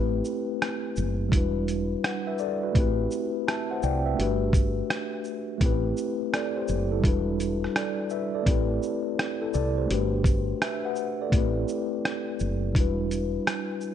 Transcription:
Already playing: A1 A3 C4 E4 G4 B4
0.25 shaker
0.62 cross-stick, closed hi-hat
0.96 F#1, shaker
1.29 E1 G3 D4 E4, kick, closed hi-hat
1.35 F#4 B4
1.68 closed hi-hat, shaker
2.04 B4 F#5, cross-stick, closed hi-hat
2.27 B4 E5
2.38 A4 D5, shaker
2.63 F#4 B4
2.72 A1 A3 C4 E4, kick, closed hi-hat
2.79 G4 B4
3.11 shaker
3.48 E5 A5, cross-stick, closed hi-hat
3.71 C5 F#5
3.83 C2 D5 G5, shaker
4.06 B4 E5
4.14 A3 D4
4.19 G1 F#4 G4, closed hi-hat
4.23 B4
4.53 kick, closed hi-hat, shaker
4.90 cross-stick, closed hi-hat
5.24 shaker
5.58 A1 A3 C4 E4, kick, closed hi-hat
5.64 G4 B4
5.97 shaker
6.33 A4 D5, cross-stick, closed hi-hat
6.56 G4 C5
6.68 F#1, shaker
6.92 E4 A4
7.00 G3 D4 E4, kick
7.04 E1 F#4, closed hi-hat
7.09 B4
7.40 closed hi-hat, shaker
7.64 cross-stick
7.76 A4 D5, cross-stick, closed hi-hat
8.10 B4 E5, shaker
8.35 A4 D5
8.43 A1 A3 C4 E4, kick, closed hi-hat
8.49 G4 B4
8.83 shaker
9.19 cross-stick, closed hi-hat
9.42 E4 A4
9.54 C2 A4 D5, shaker
9.77 G4 C5
9.86 A3 D4
9.90 G1 F#4 G4 B4, closed hi-hat
10.24 kick, closed hi-hat, shaker
10.62 B4 E5, cross-stick, closed hi-hat
10.85 B4 F#5
10.96 shaker
11.21 A4 D5
11.30 A1 A3 B3 E4, kick, closed hi-hat
11.35 C4 G4 B4
11.68 shaker
12.05 cross-stick, closed hi-hat
12.39 F#1, shaker
12.72 E1 G3 D4, kick, closed hi-hat
12.77 E4 F#4 B4
13.11 closed hi-hat, shaker
13.47 cross-stick, closed hi-hat
13.81 shaker

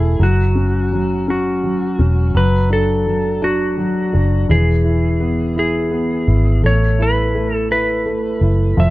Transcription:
Already playing: E1 A3 E4 G#4
0.19 F#1 F#3 F#4
0.55 C#4
0.92 F#3
1.28 C#4 F#4
1.64 F#3
1.99 E1 C#4
2.35 F#1 F#3 B4
2.70 D4 A4
3.07 F#3
3.42 D4 F#4
3.77 F#3
4.13 F#1 D4
4.49 E1 E3 G#4
4.84 E4
5.20 B3
5.56 E4 G#4
5.91 B3
6.27 G#1 E4
6.63 A1 A3 C#5
6.99 E4 B4
7.35 A3
7.56 A4
7.71 E4 B4
8.06 A3
8.41 F#1 E4
8.77 F1 F3 E5

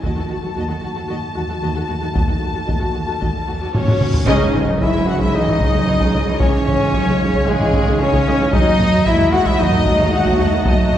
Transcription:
0.01 D#2 D#3 A3 F#4 A5, taiko
0.05 D#5
0.15 D#3 F#4
0.20 A4
0.29 D#2 D#3 F#4
0.42 D#3 F#4
0.46 A4
0.55 D#2 D#3 F#4 D#5
0.68 D#3 F#4 A4
0.82 D#2 D#3 F#4
0.95 D#3 F#4 A4
1.08 D#2 D#3 F#4 D#5
1.35 D#2 D#3 F#4
1.49 D#3 F#4 A4
1.62 D#2 D#3 F#4 D#5
1.75 D#3 F#4 A4
1.87 D#2 D#3 F#4
2.00 D#3 F#4 A4
2.14 D#2 D#3 F#4 D#5, taiko, reverse cymbal
2.28 D#3 F#4 A4
2.41 D#2 D#3 F#4
2.54 D#3 F#4 A4
2.67 D#2 D#3 F#4 D#5, taiko
2.79 D#3 F#4 A4
2.94 D#2 D#3 F#4
3.07 D#3 F#4 A4
3.19 D#2 D#3 F#4 D#5, taiko
3.47 D#2 D#3 F#4
3.60 D#3 F#4 A4
3.74 D#2 D#3 C#4 F#4 C#5 D#5, taiko low-mid
3.88 D#3 F#4 A4, taiko low-mid
4.01 D#2 D#3 F#4, taiko mid
4.14 D#3 F#4 A4, taiko low
4.26 C#2 C#3 G#3 C#4 D#4 G#4 D#5 G#5, taiko, tam-tam, impact
4.54 C#2 E3 F#3, taiko low-mid
4.67 C#2 G#3
4.80 C#2 G#3 E4 E5, taiko
4.94 C#2 G#3
5.06 C#2 E3 F#4 F#5
5.20 C#2 G#3 E4 E5, taiko
5.33 C#2 E3 G#3 D#4 D#5
5.47 C#2 E3, taiko low-mid
5.59 C#2 F#3 G#3, taiko
5.74 C#2 G#3
5.87 C#2 E3
6.00 C#2 G#3, taiko
6.13 C#2 G#3
6.26 C#2 E3
6.39 C#2 E3 G#3 C#4 C#5, taiko
6.43 C#5
6.66 C#2 E3, taiko low-mid
6.80 C#2 G#3
6.94 C#2 F#3 G#3, taiko
7.06 C#2 G#3
7.20 C#2 E3
7.33 C#2 G#3, taiko
7.46 C#2 E3 G#3 G#4
7.60 C#2 E3, taiko low-mid
7.73 C#2 D#3 G#3, taiko
7.88 C#2 G#3
8.00 C#2 E3 C#4 C#5
8.13 C#2 G#3, taiko
8.27 C#2 G#3
8.41 C#2 E3
8.51 D#2 F#3 A3 D#4 F#4 D#5 A5, taiko
8.80 D#2 D#3, taiko low-mid
8.92 D#2 F#3
9.05 D#2 F#3 G#3 E4 E5, taiko
9.19 D#2 F#3
9.32 D#2 D#3 F#4 F#5
9.45 D#2 F#3 E4 E5, taiko
9.58 D#2 F#3 D#4 D#5
9.62 D#4
9.72 D#2 D#3, taiko low-mid
9.84 D#2 F#3 G#3, taiko
9.99 D#2 F#3
10.11 D#2 D#3 F#4 F#5
10.24 D#2 F#3, taiko
10.38 D#2 F#3
10.51 D#2 D#3
10.64 D#2 F#3 D#4 D#5, taiko
10.91 D#2 D#3, taiko low-mid

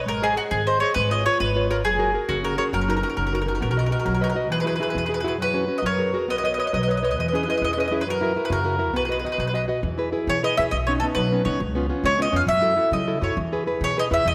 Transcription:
0.06 G#1 G#3 A#4
0.22 G#4 C5 D#5
0.36 F#4 G#4 C5 D#5
0.51 G#1 D#3 G#4
0.67 G#4 C5 D#5
0.80 G#4 C5 C#5 D#5
0.94 G#1 G#3 B4
1.11 F4 B4 C#5 D#5
1.26 F4 B4 C#5
1.40 G#1 G#3 B4
1.56 F4 B4 C#5
1.70 F4 A#4 B4 C#5
1.85 F#1 F#3 G#4
1.99 F#4 G#4 A#4
2.14 F#4 G#4 A#4
2.28 F#1 C#3 C#4 F#4
2.44 F#4 G#4 A#4
2.58 F#4 G#4 A#4 C#5
2.72 F#1 F#3 F#4 A#4
2.81 F#4 A#4
2.88 D#4 F#4 A#4
2.96 F#4 A#4
3.02 D#4 F#4 A#4
3.10 F#4 A#4
3.17 F#1 C#3 F#4 A#4
3.25 F#4 A#4
3.31 D#4 F#4 A#4
3.41 F#4 A#4
3.46 D#4 F#4 A#4
3.50 F#4
3.55 F#4 A#4
3.61 B1 B3 F#4 A#4
3.71 F#4 A#4
3.76 F#4 A#4 B4 D#5
3.86 F#4 A#4
3.91 F#4 A#4 B4 D#5
3.99 F#4 A#4
4.05 B1 F#3 F#4 A#4
4.14 F#4 A#4
4.21 F#4 A#4 B4 D#5
4.29 F#4 A#4
4.35 F#4 B4 D#5
4.50 E2 E3 G#4 B4
4.60 G#4 B4
4.64 E4 F#4 G#4 B4
4.76 G#4 B4
4.80 E4 F#4 G#4 B4
4.90 B2 G#4 B4
4.95 E2 G#4 B4
5.05 E4 F#4 G#4 B4
5.14 G#4 B4
5.20 F#4 G#4 B4
5.24 E4 G#4 B4
5.38 F#2 F#3 F#4 B4
5.54 C#4 F#4 B4
5.68 C#4 F#4 B4
5.78 B4 D#5
5.82 F#2 F#3 A#4 C#5
5.98 F#4 G#4 A#4
6.14 F#4 G#4 A#4
6.28 B1 B3 B4 D#5
6.38 B4 D#5
6.43 B4 C#5 D#5
6.53 B4 D#5
6.58 B4 C#5 D#5
6.66 B4 D#5
6.73 B1 F#3 B4 D#5
6.81 B4 D#5
6.87 B4 C#5 D#5
6.95 B4 D#5
7.03 B4 C#5 D#5
7.10 B4 D#5
7.16 E2 E3 B4
7.20 B4 D#5
7.28 B4 D#5
7.33 C#4 E4 G#4 D#5
7.38 B4
7.43 B4 D#5
7.47 C#4 E4 G#4 D#5
7.53 B4 D#5
7.62 E2 B2 B4 D#5
7.71 B4 D#5
7.77 C#4 E4 G#4 B4 D#5
7.84 B4 D#5
7.91 C#4 E4 G#4
8.00 G#4 B4
8.06 F#2 F#3 F#4
8.10 A#4
8.21 E4 F#4 A#4
8.36 E4 F#4 A#4
8.44 G#4 B4
8.50 F#2 C#3 F#4 A#4
8.64 E4 F#4 A#4
8.79 E4 F#4 A#4
8.93 B1 B3 F#4 B4
9.05 F#4 G#4 B4
9.09 G#4 B4 D#5
9.18 G#4 B4
9.24 F#4 G#4 B4 D#5
9.32 G#4 B4
9.38 B1 F#3 G#4 B4
9.47 G#4 B4
9.54 F#4 G#4 B4 D#5
9.68 F#4 B4 D#5
9.82 E2 E3
9.98 E4 G#4 B4
10.12 E4 G#4 B4
10.27 B2 E3 C#5
10.43 E4 G#4 B4 D#5
10.57 E2 E4 G#4 B4 E5
10.71 B1 B2 D#5
10.87 B3 C#4 D#4 C#5
11.00 B3 C#4 D#4 A4
11.15 B2 F#3 B4
11.32 B3 C#4 D#4
11.45 C2 B3 C#4 D#4 C#5
11.59 C#2 C#3
11.75 B3 C#4 F4
11.89 B3 C#4 F4
12.04 C#3 G#3 C#5
12.19 B3 C#4 F4 D#5
12.32 F2 B3 C#4 F4
12.36 F5
12.46 F#2 F#3 E5
12.61 E4 F#4 A4
12.76 E4 F#4 A4
12.91 C#3 F#3 D#5
13.07 E4 F#4 A4
13.21 F#2 E4 F#4 A4 C#5
13.37 E2 E3
13.52 E4 G#4 B4
13.66 E4 G#4 B4
13.81 B2 E3 C#5
13.97 E4 G#4 B4 D#5
14.11 E2 E4 G#4 B4 E5
14.25 E2 E3 D#5

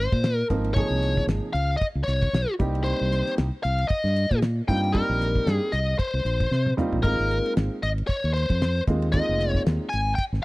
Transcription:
Already playing: C5
0.12 A#2, kick, ride
0.24 snare, ride
0.50 G#1 F3 A#3 C4 D#4 A#4, kick, hi-hat pedal, ride
0.64 ride
0.74 C3 F3 A#3 D#4 G#4 C#5, kick, ride
0.90 C2
1.02 snare, hi-hat pedal, ride
1.17 kick, snare
1.27 G#1, snare, ride
1.53 C#2 F5, hi-hat pedal, ride
1.77 D#5
1.81 kick, ride
1.95 C#2
2.04 C#5
2.08 C2, snare, hi-hat pedal, ride
2.22 kick, ride
2.33 B1, snare, ride
2.59 C2 G3 A#3 C4 D#4 G4, kick, hi-hat pedal, ride
2.75 ride
2.84 C5, ride
3.01 C2
3.12 snare, hi-hat pedal, ride
3.27 snare, ride
3.38 C2, snare, ride
3.63 C2 F5, hi-hat pedal, ride
3.78 ride
3.88 D#5, kick, ride
4.04 G2, snare
4.16 hi-hat pedal, ride
4.31 A#2, kick, ride
4.42 snare, ride
4.68 G2 G3 A#3 C4 D#4 F4 G5, kick, hi-hat pedal, ride
4.84 ride
4.92 G3 A#3 C4 D#4 G4 A#4, kick, ride
5.09 A#1
5.21 snare, hi-hat pedal, ride
5.36 kick
5.46 G2, snare, ride
5.52 G#4
5.72 C2 D#5, hi-hat pedal, ride
5.99 C5, kick, ride
6.14 C2
6.25 A#1, hi-hat pedal, ride
6.40 kick, ride
6.51 C3, snare
6.66 high tom
6.77 G3 A#3 C4 D#4 F4, hi-hat pedal, mid tom
6.93 A#1, floor tom
7.03 G#1 G#3 A#3 C4 D#4 F4 A#4, kick, ride
7.19 G#1
7.31 hi-hat pedal, ride
7.46 ride
7.57 G#1, snare, ride
7.83 G#1 D#5, hi-hat pedal, ride
7.98 ride
8.07 C#5, muted fingered electric bass stroke, kick, ride
8.24 D#2
8.34 C5, hi-hat pedal, ride
8.50 F2, kick, ride
8.62 snare, ride
8.87 D#2 G#3 A#3 C4 D#4 F4, kick, hi-hat pedal, ride
9.02 ride
9.12 G#3 A#3 C4 D#4 F4 D#5, kick, ride
9.29 F1
9.40 snare, hi-hat pedal, ride
9.55 kick, snare
9.66 D#2, snare, ride
9.89 G#5, hi-hat pedal, ride
9.93 G#1
10.15 G5, kick, ride
10.32 G#1, snare

